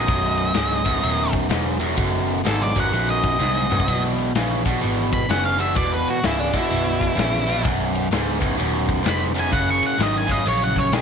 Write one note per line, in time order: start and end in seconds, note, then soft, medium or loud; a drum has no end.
0.00 1.32 D#5 loud
0.07 0.54 B0 medium
0.07 0.51 B1 medium
0.07 0.51 F#2 medium
0.07 kick loud
0.07 ride loud
0.24 snare soft
0.38 ride medium
0.54 1.01 C#1 medium
0.54 0.82 B1 medium
0.54 0.82 G#2 loud
0.54 snare loud
0.54 ride loud
0.85 1.00 B1 medium
0.85 1.01 F#2 medium
0.85 kick medium
0.85 ride medium
1.01 1.49 D#1 medium
1.01 1.46 B1 medium
1.01 1.47 F#2 medium
1.01 ride medium
1.33 kick medium
1.33 ride medium
1.49 1.96 E1 medium
1.49 1.77 B1 medium
1.49 1.77 G#2 medium
1.49 snare loud
1.49 ride medium
1.80 1.95 B1 medium
1.80 1.95 F#2 medium
1.80 ride medium
1.96 2.44 F#1 medium
1.96 2.41 B1 medium
1.96 2.41 F#2 medium
1.96 kick loud
1.96 ride medium
2.28 ride medium
2.44 2.92 G#1 loud
2.44 2.72 B1 medium
2.44 2.72 G#2 medium
2.44 2.62 A4 loud
2.44 snare loud
2.44 ride medium
2.62 2.77 D5 medium
2.75 2.91 B1 medium
2.75 2.91 F#2 medium
2.75 kick medium
2.75 ride medium
2.80 3.09 F#5 medium
2.92 3.38 A#1 medium
2.92 3.36 B1 medium
2.92 3.37 F#2 medium
2.92 ride medium
3.10 4.01 D#5 loud
3.23 kick medium
3.23 ride medium
3.39 3.67 B1 medium
3.39 3.86 C2 medium
3.39 3.67 G#2 loud
3.39 snare medium
3.69 3.85 B1 medium
3.69 3.86 F#2 medium
3.69 mid tom medium
3.80 kick medium
3.88 4.34 B1 medium
3.88 4.31 E2 medium
3.88 4.31 B2 medium
3.88 kick medium
3.88 ride loud
4.05 snare soft
4.18 ride medium
4.35 4.80 A#1 medium
4.35 4.62 E2 medium
4.35 4.62 C#3 medium
4.35 snare loud
4.35 ride medium
4.65 4.80 E2 medium
4.65 4.80 B2 medium
4.65 kick medium
4.65 ride medium
4.81 5.28 G#1 medium
4.81 5.25 E2 medium
4.81 5.25 B2 medium
4.81 ride medium
5.13 5.28 B5 medium
5.13 kick medium
5.13 ride medium
5.29 5.75 F#1 loud
5.29 5.56 E2 medium
5.29 5.56 C#3 medium
5.29 5.45 F#5 loud
5.29 snare loud
5.29 ride loud
5.45 5.60 F5 medium
5.58 5.74 E2 medium
5.58 5.74 B2 medium
5.58 5.76 E5 medium
5.58 ride medium
5.75 6.04 E1 medium
5.75 6.19 E2 medium
5.75 6.20 B2 medium
5.75 5.91 D5 medium
5.75 kick loud
5.75 ride medium
5.94 6.08 B4 medium
6.08 6.24 F#4 medium
6.08 ride medium
6.23 6.52 C#1 loud
6.23 6.50 E2 medium
6.23 6.51 C#3 medium
6.23 6.39 E4 medium
6.23 snare loud
6.23 ride medium
6.39 6.54 D4 loud
6.53 6.68 E2 medium
6.53 6.69 B2 medium
6.53 kick medium
6.53 ride medium
6.57 7.62 E4 loud
6.70 7.16 B0 medium
6.70 7.14 E2 medium
6.70 7.14 B2 loud
6.70 ride medium
7.01 kick medium
7.01 ride medium
7.15 7.63 A#1 medium
7.15 7.43 E2 medium
7.15 7.43 C#3 medium
7.15 snare loud
7.15 ride loud
7.46 7.62 E2 medium
7.46 7.63 B2 medium
7.46 ride medium
7.63 8.10 B0 medium
7.63 8.07 B1 medium
7.63 8.08 F#2 loud
7.63 kick loud
7.63 ride medium
7.95 ride medium
8.11 8.57 C#1 medium
8.11 8.38 B1 medium
8.11 8.39 G#2 medium
8.11 snare loud
8.11 ride loud
8.39 8.56 B1 medium
8.39 8.56 F#2 medium
8.39 kick medium
8.39 ride medium
8.57 9.05 D#1 medium
8.57 9.01 B1 medium
8.57 9.02 F#2 medium
8.57 ride medium
8.89 kick medium
8.89 ride medium
9.04 9.51 F1 loud
9.04 9.31 B1 medium
9.04 9.31 G#2 medium
9.04 snare loud
9.04 ride loud
9.09 9.22 B5 loud
9.34 9.50 B1 medium
9.34 9.50 F#2 medium
9.34 ride medium
9.39 9.53 G#5 loud
9.52 9.81 F#1 medium
9.52 9.96 F#2 medium
9.52 9.96 C#3 loud
9.52 9.68 F#5 medium
9.52 kick loud
9.52 ride medium
9.70 9.84 C#6 medium
9.83 10.00 F#5 loud
9.83 muted picked electric bass stroke soft
9.83 ride medium
9.98 10.45 G#1 medium
9.98 10.25 F#2 medium
9.98 10.26 D#3 medium
9.98 snare loud
9.98 ride medium
10.03 10.16 D#5 medium
10.18 10.32 G#5 loud
10.26 10.43 F#2 medium
10.26 10.44 C#3 medium
10.26 kick medium
10.26 ride medium
10.31 10.46 D#5 medium
10.45 10.92 A#1 medium
10.45 10.89 F#2 medium
10.45 10.90 C#3 medium
10.45 10.63 C#5 medium
10.45 ride medium
10.64 10.78 F#5 medium
10.76 10.93 C#5 medium
10.76 kick medium
10.76 ride medium
10.92 11.02 B1 medium
10.92 11.02 F#2 medium
10.92 11.02 D#3 medium
10.92 11.02 G#4 medium
10.92 snare loud
10.92 ride loud